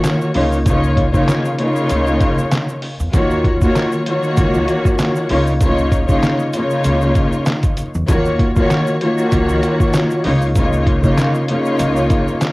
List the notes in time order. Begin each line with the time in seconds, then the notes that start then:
Already playing: D#3 A#3 F4 F#4 C#5
0.04 snare, clap, closed hi-hat, shaker
0.21 shaker
0.34 C#2 C#3 A#3 D#4 F4 C#5, open hi-hat
0.52 shaker
0.66 C#3 A#3 D#4 F4 C#5, kick, closed hi-hat, shaker
0.84 shaker
0.97 kick, closed hi-hat
1.12 C#3 A#3 D#4 F4 C#5, kick, shaker
1.28 snare, clap, closed hi-hat, shaker
1.45 shaker
1.59 C#3 A#3 D#4 F4 C#5, closed hi-hat
1.76 shaker
1.90 C#2, closed hi-hat, shaker
2.07 shaker
2.21 kick, closed hi-hat, shaker
2.38 shaker
2.51 snare, clap, closed hi-hat, shaker
2.69 shaker
2.82 open hi-hat
3.00 E2, shaker
3.13 D#2 D#3 A#3 F4 F#4 C#5, kick, closed hi-hat, shaker
3.31 shaker
3.44 kick, closed hi-hat
3.61 D#3 A#3 F4 F#4 C#5, kick, shaker
3.75 snare, clap, closed hi-hat, shaker
3.92 shaker
4.06 D#3 A#3 F4 F#4 C#5, closed hi-hat
4.23 shaker
4.37 C#2, kick, closed hi-hat, shaker
4.54 shaker
4.68 closed hi-hat, shaker
4.85 kick, shaker
4.99 snare, clap, closed hi-hat, shaker
5.16 shaker
5.29 C#2 C#3 A#3 D#4 F4 C#5, open hi-hat
5.47 shaker
5.61 C#3 A#3 D#4 F4 C#5, kick, closed hi-hat, shaker
5.78 shaker
5.92 kick, closed hi-hat, shaker
6.07 C#3 A#3 D#4 F4 C#5, kick, shaker
6.23 snare, clap, closed hi-hat, shaker
6.39 shaker
6.53 C#3 A#3 D#4 F4 C#5, closed hi-hat, shaker
6.70 shaker
6.84 C#2, closed hi-hat, shaker
7.01 shaker
7.15 kick, closed hi-hat, shaker
7.33 shaker
7.46 snare, clap, closed hi-hat, shaker
7.63 kick, closed hi-hat, shaker
7.77 closed hi-hat, shaker
7.94 E2, shaker
8.08 D#2 D#3 A#3 F4 F#4 C#5, kick, closed hi-hat, shaker
8.25 shaker
8.39 kick, closed hi-hat
8.56 D#3 A#3 F4 F#4 C#5, kick, shaker
8.70 snare, clap, closed hi-hat, shaker
8.87 shaker
9.01 D#3 A#3 F4 F#4 C#5, closed hi-hat
9.18 shaker
9.32 C#2, kick, closed hi-hat, shaker
9.49 shaker
9.63 closed hi-hat, shaker
9.80 kick, shaker
9.93 snare, clap, closed hi-hat, shaker
10.10 shaker
10.24 C#2 C#3 A#3 D#4 F4 C#5, open hi-hat
10.42 shaker
10.55 C#3 A#3 D#4 F4 C#5, kick, closed hi-hat, shaker
10.73 shaker
10.87 kick, closed hi-hat
11.02 C#3 A#3 D#4 F4 C#5, kick, shaker
11.18 snare, clap, closed hi-hat, shaker
11.34 shaker
11.48 C#3 A#3 D#4 F4 C#5, closed hi-hat
11.65 shaker
11.79 C#2, closed hi-hat, shaker
11.96 shaker
12.10 kick, closed hi-hat, shaker
12.28 shaker
12.41 snare, clap, closed hi-hat, shaker